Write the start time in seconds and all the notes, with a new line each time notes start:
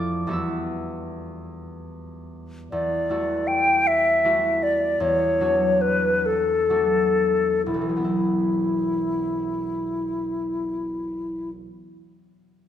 Already playing: F2 F3 A3 C4 E4 A4 D5 E5 F5 A5 D6 E6 F6 A6
0.27 E2 G3 B3 E4 F#4
0.31 E5 E6
2.72 E2 D5
3.09 G3 A3 E4 F#4
3.47 G5
3.87 E5
4.24 G3 A3 E4 F#4
4.63 D5
5.00 E2 C#5
5.40 F#3 A3 D4 F#4
5.81 B4
6.26 A4
6.70 F#3 A3 D4 F#4
7.66 E1 E4
7.74 B1
7.81 E3
7.89 F#3
7.97 B3
8.04 E4